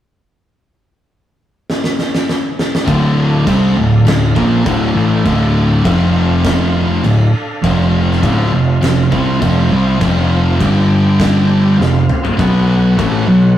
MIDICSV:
0, 0, Header, 1, 5, 480
1, 0, Start_track
1, 0, Tempo, 595238
1, 389, Time_signature, 4, 2, 24, 8
1, 10950, End_track
2, 0, Start_track
2, 0, Title_t, "Tonewheel organ"
2, 0, Program_c, 0, 16
2, 2318, Note_on_c, 0, 62, 67
2, 2319, Note_on_c, 0, 77, 72
2, 2320, Note_on_c, 0, 69, 58
2, 4691, Note_off_c, 0, 62, 0
2, 4692, Note_off_c, 0, 69, 0
2, 4725, Note_on_c, 0, 60, 66
2, 4727, Note_on_c, 0, 65, 62
2, 5643, Note_off_c, 0, 77, 0
2, 5668, Note_off_c, 0, 60, 0
2, 5670, Note_off_c, 0, 65, 0
2, 5673, Note_on_c, 0, 69, 67
2, 5676, Note_on_c, 0, 77, 79
2, 5679, Note_on_c, 0, 62, 71
2, 6147, Note_off_c, 0, 69, 0
2, 6148, Note_on_c, 0, 60, 65
2, 6150, Note_off_c, 0, 62, 0
2, 6155, Note_on_c, 0, 65, 61
2, 8525, Note_off_c, 0, 77, 0
2, 8526, Note_off_c, 0, 60, 0
2, 8529, Note_off_c, 0, 65, 0
2, 8540, Note_on_c, 0, 67, 59
2, 8544, Note_on_c, 0, 79, 69
2, 8548, Note_on_c, 0, 62, 71
2, 9488, Note_on_c, 0, 65, 61
2, 9492, Note_on_c, 0, 60, 70
2, 9495, Note_off_c, 0, 67, 0
2, 9497, Note_on_c, 0, 77, 72
2, 9498, Note_off_c, 0, 79, 0
2, 9499, Note_off_c, 0, 62, 0
2, 9974, Note_off_c, 0, 65, 0
2, 9976, Note_off_c, 0, 60, 0
2, 9977, Note_on_c, 0, 78, 65
2, 9979, Note_off_c, 0, 77, 0
2, 9980, Note_on_c, 0, 59, 65
2, 9981, Note_on_c, 0, 66, 58
2, 10950, Note_off_c, 0, 59, 0
2, 10950, Note_off_c, 0, 66, 0
2, 10950, Note_off_c, 0, 78, 0
2, 10950, End_track
3, 0, Start_track
3, 0, Title_t, "Distorted electric guitar"
3, 0, Program_c, 1, 30
3, 2316, Note_on_c, 1, 38, 93
3, 2317, Note_on_c, 1, 45, 107
3, 2320, Note_on_c, 1, 50, 112
3, 2786, Note_off_c, 1, 38, 0
3, 2786, Note_off_c, 1, 45, 0
3, 2787, Note_off_c, 1, 50, 0
3, 2791, Note_on_c, 1, 48, 88
3, 2792, Note_on_c, 1, 55, 99
3, 2798, Note_on_c, 1, 60, 107
3, 3023, Note_off_c, 1, 48, 0
3, 3023, Note_off_c, 1, 55, 0
3, 3026, Note_off_c, 1, 60, 0
3, 3034, Note_on_c, 1, 38, 67
3, 3039, Note_on_c, 1, 45, 69
3, 3224, Note_off_c, 1, 38, 0
3, 3226, Note_off_c, 1, 45, 0
3, 3267, Note_on_c, 1, 38, 74
3, 3274, Note_on_c, 1, 45, 70
3, 3461, Note_off_c, 1, 38, 0
3, 3464, Note_off_c, 1, 45, 0
3, 3507, Note_on_c, 1, 46, 79
3, 3511, Note_on_c, 1, 53, 83
3, 3516, Note_on_c, 1, 58, 89
3, 3741, Note_off_c, 1, 46, 0
3, 3743, Note_off_c, 1, 53, 0
3, 3746, Note_off_c, 1, 58, 0
3, 3748, Note_on_c, 1, 38, 91
3, 3751, Note_on_c, 1, 45, 111
3, 3754, Note_on_c, 1, 50, 113
3, 3979, Note_off_c, 1, 45, 0
3, 3982, Note_off_c, 1, 38, 0
3, 3985, Note_off_c, 1, 50, 0
3, 3988, Note_on_c, 1, 45, 92
3, 3993, Note_on_c, 1, 52, 104
3, 3993, Note_on_c, 1, 57, 104
3, 4222, Note_off_c, 1, 45, 0
3, 4224, Note_off_c, 1, 52, 0
3, 4224, Note_off_c, 1, 57, 0
3, 4232, Note_on_c, 1, 38, 100
3, 4236, Note_on_c, 1, 45, 106
3, 4238, Note_on_c, 1, 50, 106
3, 4712, Note_off_c, 1, 38, 0
3, 4712, Note_on_c, 1, 41, 83
3, 4716, Note_off_c, 1, 45, 0
3, 4716, Note_on_c, 1, 48, 91
3, 4720, Note_off_c, 1, 50, 0
3, 4720, Note_on_c, 1, 53, 107
3, 5664, Note_off_c, 1, 41, 0
3, 5666, Note_off_c, 1, 48, 0
3, 5668, Note_off_c, 1, 53, 0
3, 5673, Note_on_c, 1, 38, 65
3, 5677, Note_on_c, 1, 45, 72
3, 5864, Note_off_c, 1, 38, 0
3, 5866, Note_off_c, 1, 45, 0
3, 6154, Note_on_c, 1, 41, 92
3, 6156, Note_on_c, 1, 48, 104
3, 6159, Note_on_c, 1, 53, 105
3, 6625, Note_off_c, 1, 41, 0
3, 6626, Note_off_c, 1, 48, 0
3, 6628, Note_off_c, 1, 53, 0
3, 6637, Note_on_c, 1, 38, 85
3, 6642, Note_on_c, 1, 45, 85
3, 6646, Note_on_c, 1, 50, 108
3, 6867, Note_off_c, 1, 38, 0
3, 6869, Note_off_c, 1, 45, 0
3, 6871, Note_off_c, 1, 50, 0
3, 6872, Note_on_c, 1, 41, 56
3, 6875, Note_on_c, 1, 48, 66
3, 7064, Note_off_c, 1, 41, 0
3, 7065, Note_off_c, 1, 48, 0
3, 7120, Note_on_c, 1, 41, 60
3, 7122, Note_on_c, 1, 48, 67
3, 7308, Note_off_c, 1, 41, 0
3, 7309, Note_off_c, 1, 48, 0
3, 7355, Note_on_c, 1, 48, 86
3, 7358, Note_on_c, 1, 55, 86
3, 7362, Note_on_c, 1, 60, 93
3, 7582, Note_off_c, 1, 48, 0
3, 7586, Note_on_c, 1, 41, 93
3, 7587, Note_off_c, 1, 55, 0
3, 7589, Note_off_c, 1, 60, 0
3, 7591, Note_on_c, 1, 48, 98
3, 7595, Note_on_c, 1, 53, 114
3, 7821, Note_off_c, 1, 41, 0
3, 7824, Note_off_c, 1, 48, 0
3, 7826, Note_off_c, 1, 53, 0
3, 7834, Note_on_c, 1, 48, 98
3, 7837, Note_on_c, 1, 55, 103
3, 7839, Note_on_c, 1, 60, 97
3, 8062, Note_off_c, 1, 48, 0
3, 8067, Note_off_c, 1, 55, 0
3, 8068, Note_off_c, 1, 60, 0
3, 8070, Note_on_c, 1, 41, 87
3, 8072, Note_on_c, 1, 48, 109
3, 8073, Note_on_c, 1, 53, 111
3, 8547, Note_off_c, 1, 41, 0
3, 8547, Note_on_c, 1, 43, 87
3, 8552, Note_off_c, 1, 48, 0
3, 8552, Note_on_c, 1, 50, 94
3, 8556, Note_off_c, 1, 53, 0
3, 8556, Note_on_c, 1, 55, 92
3, 9501, Note_off_c, 1, 43, 0
3, 9504, Note_off_c, 1, 50, 0
3, 9506, Note_off_c, 1, 55, 0
3, 9507, Note_on_c, 1, 41, 71
3, 9514, Note_on_c, 1, 48, 77
3, 9701, Note_off_c, 1, 41, 0
3, 9704, Note_off_c, 1, 48, 0
3, 9982, Note_on_c, 1, 47, 93
3, 9990, Note_on_c, 1, 54, 91
3, 9990, Note_on_c, 1, 59, 99
3, 10458, Note_off_c, 1, 47, 0
3, 10460, Note_off_c, 1, 54, 0
3, 10461, Note_on_c, 1, 45, 93
3, 10463, Note_off_c, 1, 59, 0
3, 10463, Note_on_c, 1, 52, 100
3, 10469, Note_on_c, 1, 57, 103
3, 10698, Note_off_c, 1, 45, 0
3, 10699, Note_off_c, 1, 52, 0
3, 10702, Note_off_c, 1, 57, 0
3, 10712, Note_on_c, 1, 47, 60
3, 10716, Note_on_c, 1, 54, 64
3, 10903, Note_off_c, 1, 47, 0
3, 10905, Note_off_c, 1, 54, 0
3, 10950, End_track
4, 0, Start_track
4, 0, Title_t, "Picked electric bass"
4, 0, Program_c, 2, 34
4, 2319, Note_on_c, 2, 26, 90
4, 2762, Note_off_c, 2, 26, 0
4, 2798, Note_on_c, 2, 36, 98
4, 3017, Note_off_c, 2, 36, 0
4, 3042, Note_on_c, 2, 26, 93
4, 3259, Note_off_c, 2, 26, 0
4, 3271, Note_on_c, 2, 26, 89
4, 3494, Note_off_c, 2, 26, 0
4, 3519, Note_on_c, 2, 34, 94
4, 3738, Note_off_c, 2, 34, 0
4, 3762, Note_on_c, 2, 26, 88
4, 3979, Note_off_c, 2, 26, 0
4, 4003, Note_on_c, 2, 33, 106
4, 4220, Note_off_c, 2, 33, 0
4, 4241, Note_on_c, 2, 26, 86
4, 4683, Note_off_c, 2, 26, 0
4, 4720, Note_on_c, 2, 29, 93
4, 5643, Note_off_c, 2, 29, 0
4, 5675, Note_on_c, 2, 26, 76
4, 5896, Note_off_c, 2, 26, 0
4, 6164, Note_on_c, 2, 29, 96
4, 6606, Note_off_c, 2, 29, 0
4, 6642, Note_on_c, 2, 26, 99
4, 6860, Note_off_c, 2, 26, 0
4, 6875, Note_on_c, 2, 29, 91
4, 7097, Note_off_c, 2, 29, 0
4, 7113, Note_on_c, 2, 29, 86
4, 7335, Note_off_c, 2, 29, 0
4, 7356, Note_on_c, 2, 36, 100
4, 7577, Note_off_c, 2, 36, 0
4, 7595, Note_on_c, 2, 29, 90
4, 7816, Note_off_c, 2, 29, 0
4, 7839, Note_on_c, 2, 36, 110
4, 8059, Note_off_c, 2, 36, 0
4, 8075, Note_on_c, 2, 29, 90
4, 8521, Note_off_c, 2, 29, 0
4, 8552, Note_on_c, 2, 31, 95
4, 9479, Note_off_c, 2, 31, 0
4, 9512, Note_on_c, 2, 29, 78
4, 9734, Note_off_c, 2, 29, 0
4, 9992, Note_on_c, 2, 35, 88
4, 10439, Note_off_c, 2, 35, 0
4, 10473, Note_on_c, 2, 33, 99
4, 10695, Note_off_c, 2, 33, 0
4, 10706, Note_on_c, 2, 35, 88
4, 10931, Note_off_c, 2, 35, 0
4, 10950, End_track
5, 0, Start_track
5, 0, Title_t, "Drums"
5, 1368, Note_on_c, 9, 38, 72
5, 1448, Note_off_c, 9, 38, 0
5, 1484, Note_on_c, 9, 38, 81
5, 1565, Note_off_c, 9, 38, 0
5, 1603, Note_on_c, 9, 38, 75
5, 1684, Note_off_c, 9, 38, 0
5, 1730, Note_on_c, 9, 38, 90
5, 1810, Note_off_c, 9, 38, 0
5, 1849, Note_on_c, 9, 38, 85
5, 1930, Note_off_c, 9, 38, 0
5, 2091, Note_on_c, 9, 38, 94
5, 2172, Note_off_c, 9, 38, 0
5, 2216, Note_on_c, 9, 38, 107
5, 2297, Note_off_c, 9, 38, 0
5, 2320, Note_on_c, 9, 36, 112
5, 2326, Note_on_c, 9, 49, 59
5, 2400, Note_off_c, 9, 36, 0
5, 2406, Note_off_c, 9, 49, 0
5, 2798, Note_on_c, 9, 36, 105
5, 2798, Note_on_c, 9, 49, 66
5, 2878, Note_off_c, 9, 49, 0
5, 2879, Note_off_c, 9, 36, 0
5, 3278, Note_on_c, 9, 49, 69
5, 3292, Note_on_c, 9, 38, 121
5, 3359, Note_off_c, 9, 49, 0
5, 3373, Note_off_c, 9, 38, 0
5, 3518, Note_on_c, 9, 36, 97
5, 3599, Note_off_c, 9, 36, 0
5, 3759, Note_on_c, 9, 36, 116
5, 3760, Note_on_c, 9, 49, 68
5, 3840, Note_off_c, 9, 36, 0
5, 3841, Note_off_c, 9, 49, 0
5, 4238, Note_on_c, 9, 49, 57
5, 4239, Note_on_c, 9, 36, 95
5, 4319, Note_off_c, 9, 36, 0
5, 4319, Note_off_c, 9, 49, 0
5, 4720, Note_on_c, 9, 36, 106
5, 4722, Note_on_c, 9, 49, 57
5, 4800, Note_off_c, 9, 36, 0
5, 4803, Note_off_c, 9, 49, 0
5, 5198, Note_on_c, 9, 36, 118
5, 5198, Note_on_c, 9, 49, 59
5, 5212, Note_on_c, 9, 38, 121
5, 5279, Note_off_c, 9, 36, 0
5, 5279, Note_off_c, 9, 49, 0
5, 5292, Note_off_c, 9, 38, 0
5, 5678, Note_on_c, 9, 49, 55
5, 5758, Note_off_c, 9, 49, 0
5, 6160, Note_on_c, 9, 36, 115
5, 6163, Note_on_c, 9, 49, 55
5, 6240, Note_off_c, 9, 36, 0
5, 6243, Note_off_c, 9, 49, 0
5, 6542, Note_on_c, 9, 38, 30
5, 6623, Note_off_c, 9, 38, 0
5, 6638, Note_on_c, 9, 36, 114
5, 6641, Note_on_c, 9, 49, 60
5, 6719, Note_off_c, 9, 36, 0
5, 6721, Note_off_c, 9, 49, 0
5, 7116, Note_on_c, 9, 49, 62
5, 7129, Note_on_c, 9, 38, 114
5, 7196, Note_off_c, 9, 49, 0
5, 7210, Note_off_c, 9, 38, 0
5, 7355, Note_on_c, 9, 36, 107
5, 7436, Note_off_c, 9, 36, 0
5, 7596, Note_on_c, 9, 36, 107
5, 7598, Note_on_c, 9, 49, 62
5, 7676, Note_off_c, 9, 36, 0
5, 7679, Note_off_c, 9, 49, 0
5, 8074, Note_on_c, 9, 36, 108
5, 8074, Note_on_c, 9, 49, 63
5, 8155, Note_off_c, 9, 36, 0
5, 8155, Note_off_c, 9, 49, 0
5, 8552, Note_on_c, 9, 36, 114
5, 8556, Note_on_c, 9, 49, 64
5, 8633, Note_off_c, 9, 36, 0
5, 8636, Note_off_c, 9, 49, 0
5, 9027, Note_on_c, 9, 49, 62
5, 9029, Note_on_c, 9, 36, 118
5, 9041, Note_on_c, 9, 38, 115
5, 9108, Note_off_c, 9, 49, 0
5, 9110, Note_off_c, 9, 36, 0
5, 9122, Note_off_c, 9, 38, 0
5, 9526, Note_on_c, 9, 38, 70
5, 9607, Note_off_c, 9, 38, 0
5, 9753, Note_on_c, 9, 45, 97
5, 9834, Note_off_c, 9, 45, 0
5, 9876, Note_on_c, 9, 43, 100
5, 9957, Note_off_c, 9, 43, 0
5, 9993, Note_on_c, 9, 36, 107
5, 10003, Note_on_c, 9, 49, 55
5, 10074, Note_off_c, 9, 36, 0
5, 10084, Note_off_c, 9, 49, 0
5, 10474, Note_on_c, 9, 36, 103
5, 10478, Note_on_c, 9, 49, 58
5, 10555, Note_off_c, 9, 36, 0
5, 10558, Note_off_c, 9, 49, 0
5, 10950, End_track
0, 0, End_of_file